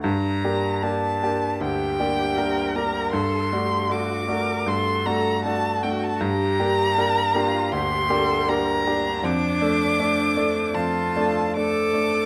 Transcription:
<<
  \new Staff \with { instrumentName = "Violin" } { \time 4/4 \key g \minor \tempo 4 = 78 bes''4 a''4 g''4. bes''8 | c'''4 d'''4 c'''8 bes''8 a''8 g''16 a''16 | bes''2 c'''4 bes''4 | d'''2 a''4 d'''4 | }
  \new Staff \with { instrumentName = "Cello" } { \time 4/4 \key g \minor r2 g'4 bes'8 bes'8 | a'8 g'8 fis'8 bes'8 a'4 fis'4 | g'4 bes'8 f'8 g'8 a'8 bes'8 d'8~ | d'2 f'4 a'4 | }
  \new Staff \with { instrumentName = "Grand piano" } { \time 4/4 \key g \minor g,8 <bes d' g'>8 <bes d' g'>8 <bes d' g'>8 d,8 <bes d' g'>8 <bes d' g'>8 <bes d' g'>8 | g,8 <a d' fis'>8 <a d' fis'>8 <a d' fis'>8 g,8 <a d' fis'>8 <a d' fis'>8 <a d' fis'>8 | g,8 <bes d' g'>8 <bes d' g'>8 <bes d' g'>8 d,8 <bes d' g'>8 <bes d' g'>8 <bes d' g'>8 | f,8 <a d' a'>8 <a d' a'>8 <a d' a'>8 f,8 <a d' a'>8 <a d' a'>8 <a d' a'>8 | }
>>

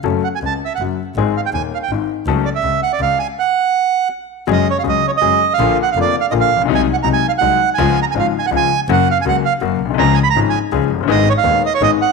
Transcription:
<<
  \new Staff \with { instrumentName = "Bandoneon" } { \time 3/4 \key fis \minor \tempo 4 = 163 r8 fis''16 gis''16 a''8 e''16 fis''8 r8. | r8 eis''16 g''16 gis''8 eis''16 g''8 r8. | r8 d''16 e''8. fis''16 d''16 eis''8 gis''8 | fis''2 r4 |
\key fis \major dis''8 cis''16 eis''16 dis''8 cis''16 dis''4 eis''16~ | eis''8 fis''16 eis''16 d''8 eis''16 dis''16 eis''8. r16 | gis''8 fis''16 ais''16 gis''8 eis''16 fis''4 gis''16~ | gis''8 ais''16 gis''16 eis''8 gis''16 fis''16 gis''8. r16 |
fis''8 eis''16 gis''16 fis''8 eis''8 r4 | ais''8 gis''16 b''16 ais''8 gis''8 r4 | dis''8 cis''16 eis''8. dis''16 cis''16 dis''8 fis''8 | }
  \new Staff \with { instrumentName = "Grand piano" } { \clef bass \time 3/4 \key fis \minor <fis, fis a cis' a'>8 r8 <cis, cis>8 r8 <fis, fis>8 r8 | <gis,, gis, dis gis bis gis'>8 r8 <dis,, dis,>8 r8 <gis,, gis,>8 r8 | <cis, cis fis a cis' a'>8 r8 <cis, cis>8 r8 <cis, cis>8 r8 | r2. |
\key fis \major <fis, fis gis cis' gis'>8 r8 <cis, cis fis gis cis' gis'>8 r8 <fis, fis gis cis' gis'>8 r8 | <ais,, ais, d eis ais eis'>8 r8 <eis,, eis, d eis ais eis'>8 r8 <ais,, ais, d eis ais eis'>8 r32 a,,32 ais,,32 b,,32 | <bis,, bis, fis gis dis'>8 r8 <bis,, bis, fis gis dis'>8 r8 <bis,, bis, fis gis dis'>8 r8 | <cis, cis eis gis eis'>8 r8 <gis,, gis, cis eis gis eis'>8 r8 <cis, cis eis gis eis'>8 r8 |
<fis, cis fis ais fis'>8 r8 <cis, cis fis ais fis'>8 r8 <fis, cis fis ais fis'>8 r32 ais,,32 b,,32 bis,,32 | <cis, cis eis gis cis' gis'>8 r8 <gis,, gis, eis gis cis' gis'>8 r8 <cis, cis eis gis cis' gis'>8 r32 eis,,32 fis,,32 g,,32 | <gis,, gis, dis gis b gis'>8 r8 <dis,, dis, dis gis b gis'>8 r8 <gis,, gis, dis gis b gis'>8 r8 | }
  \new Staff \with { instrumentName = "Double bass" } { \clef bass \time 3/4 \key fis \minor fis,,8 r8 cis,8 r8 fis,,8 r8 | gis,,8 r8 dis,8 r8 gis,,8 r8 | cis,8 r8 cis,8 r8 cis,8 r8 | r2. |
\key fis \major fis,,8 r8 cis,8 r8 fis,,8 r8 | ais,,8 r8 eis,,8 r8 ais,,8 ais,,8 | bis,,8 r8 bis,,8 r8 bis,,8 r8 | cis,8 r8 gis,,8 r8 cis,8 r8 |
fis,,8 r8 cis,8 r8 fis,,8 b,,8 | cis,8 r8 gis,,8 r8 cis,8 fis,,8 | gis,,8 r8 dis,8 r8 gis,,8 r8 | }
>>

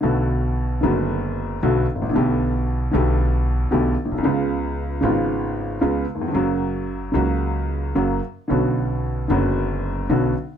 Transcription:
<<
  \new Staff \with { instrumentName = "Upright piano" } { \clef bass \time 4/4 \key b \minor \tempo 4 = 113 <b,, b, d a b fis'>4. <fis,, fis, d a b fis'>4. <b,, b, d a b fis'>8 r32 gis,,32 a,,32 ais,,32 | <b,, b, d a b g'>4. <b,, b, d a b g'>4. <b,, b, d a b g'>8 r32 ais,,32 b,,32 c,32 | <cis, cis gis b eis'>4. <gis,, gis, cis gis b eis'>4. <cis, cis gis b eis'>8 r32 dis,32 e,32 eis,32 | <fis, cis fis ais fis'>4. <cis, cis fis ais fis'>4. <fis, cis fis ais fis'>8 r8 |
<b,, b, d b cis' fis'>4. <fis,, fis, d b cis' fis'>4. <b,, b, d b cis' fis'>8 r8 | }
  \new Staff \with { instrumentName = "Upright bass" } { \clef bass \time 4/4 \key b \minor b,,4~ b,,16. r32 fis,,4~ fis,,16. r32 b,,16. r16 gis,,32 a,,32 ais,,32 | b,,4~ b,,16. r32 b,,4~ b,,16. r32 b,,16. r16 ais,,32 b,,32 c,32 | cis,4~ cis,16. r32 gis,,4~ gis,,16. r32 cis,16. r8 r32 | fis,,4~ fis,,16. r32 cis,4~ cis,16. r32 fis,,16. r8 r32 |
b,,4~ b,,16. r32 fis,,4~ fis,,16. r32 b,,16. r8 r32 | }
>>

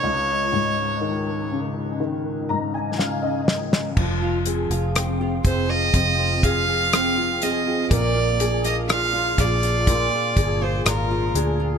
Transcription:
<<
  \new Staff \with { instrumentName = "Violin" } { \time 4/4 \key f \minor \tempo 4 = 61 des''4. r2 r8 | r4. c''16 ees''8. f''4 ees''8 | d''8. ees''16 f''8 d''4~ d''16 c''16 bes'8. r16 | }
  \new Staff \with { instrumentName = "Grand piano" } { \time 4/4 \key f \minor << { r2 r8 bes''16 aes''16 f''16 ees''8. | r1 | r1 | } \\ { des,8 aes,8 ees8 des8 ees8 aes,8 des4 | f8 aes'8 c'8 aes'8 c'8 aes'8 c'8 aes'8 | bes8 aes'8 f'8 aes'8 f'8 aes'8 f'8 aes'8 | } >> }
  \new Staff \with { instrumentName = "Nylon-string guitar" } { \time 4/4 \key f \minor r1 | f16 f'16 c'16 f'16 c'16 f'16 c'16 f'16 f16 f'16 c'16 f'16 c'16 f'16 c'16 f'16 | bes,16 f'16 d'16 f'16 d'16 f'16 d'16 f'16 bes,16 f'16 d'16 f'16 d'16 f'16 d'16 f'16 | }
  \new Staff \with { instrumentName = "Fingered electric bass" } { \clef bass \time 4/4 \key f \minor r1 | f,,8. f,,8. f,,8 f,,2 | bes,,4. bes,,8. r16 g,,8 aes,,8 d,8 | }
  \new DrumStaff \with { instrumentName = "Drums" } \drummode { \time 4/4 r4 r4 r4 sn8 sn16 sn16 | <cymc bd>8 hh16 hh16 <hh ss>8 <hh bd>8 <hh bd>8 <hh bd>8 <hh ss>8 hh8 | <hh bd>8 hh16 hh16 <hh ss>8 <hh bd>16 hh16 <hh bd>8 <hh bd>8 <hh ss>8 hh8 | }
>>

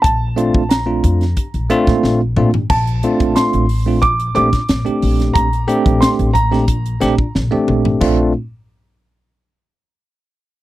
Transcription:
<<
  \new Staff \with { instrumentName = "Grand piano" } { \time 4/4 \key bes \major \tempo 4 = 90 a''4 bes''2 r4 | a''4 c'''4 d'''8 d'''4. | bes''4 c'''8 bes''4. r4 | r1 | }
  \new Staff \with { instrumentName = "Tine electric piano" } { \time 4/4 \key bes \major r8 <a c' d' f'>16 r8 <a c' d' f'>8 r16 <d' g'>16 r16 <a c' d' f'>8. r16 <a c' d' f'>16 r16 | r8 <a c' d' f'>4 r16 <a c' d' f'>16 r8 <a c' d' g'>16 r8 <a c' d' g'>8.~ | <a c' d' g'>16 r16 <a c' d' g'>4 r16 <a c' d' g'>16 r8 <a c' d' g'>16 d'16 r16 <a c' d' g'>8. | <a c' d' f'>8 r2. r8 | }
  \new Staff \with { instrumentName = "Upright bass" } { \clef bass \time 4/4 \key bes \major bes,,8. bes,,8. f,8 r16 bes,,16 r16 bes,16 bes,,8 bes,16 r16 | bes,,8 r16 bes,,16 r16 a,,8 bes,,8. bes,,16 r16 bes,,16 r16 bes,,8 | bes,,8 r16 bes,,16 r16 a,,8 bes,,8. bes,,16 r16 bes,,16 r16 bes,,8 | bes,,8 r2. r8 | }
  \new DrumStaff \with { instrumentName = "Drums" } \drummode { \time 4/4 <hh bd>8 hh16 bd16 <hh sn>8 <hh bd>16 <hh sn>16 <hh bd>16 hh16 hh16 <hh bd sn>16 sn8 toml16 tomfh16 | <cymc bd>16 hh16 hh16 <hh bd>16 <hh sn>16 hh16 hho8 <hh bd>16 hh16 hh16 <hh bd sn>16 <hh sn>16 hh16 hho16 <hh sn>16 | <hh bd>16 hh16 hh16 <hh bd>16 <hh sn>16 hh16 <hh bd>16 sn16 <hh bd>16 hh16 <hh sn>16 bd16 sn16 tommh16 toml16 tomfh16 | <cymc bd>4 r4 r4 r4 | }
>>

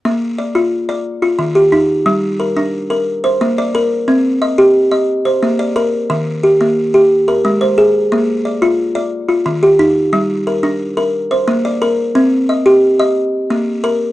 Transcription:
\new Staff \with { instrumentName = "Kalimba" } { \time 12/8 \key bes \mixolydian \tempo 4. = 119 << { r4 d''4. r4 f'4 g'4. | r4 bes'4. r4 c''4 d''4. | r4 ees''4. r4 c''4 d''4. | r4 g'4. r4 bes'4 c''4. |
r4 d''4. r4 f'4 g'4. | r4 bes'4. r4 c''4 d''4. | r4 ees''4. r2. r8 | } \\ { bes4 r8 f'4 d''8 r4 ees4 ees'4 | g4 r8 d'4 bes'8 r4 bes4 bes'4 | c'4 r8 g'4 ees''8 r4 bes4 bes'4 | ees4 r8 bes4 g'8 r4 aes4 aes'4 |
bes4 r8 f'4 d''8 r4 ees4 ees'4 | g4 r8 d'4 bes'8 r4 bes4 bes'4 | c'4 r8 g'4 ees''8 r4 bes4 bes'4 | } >> }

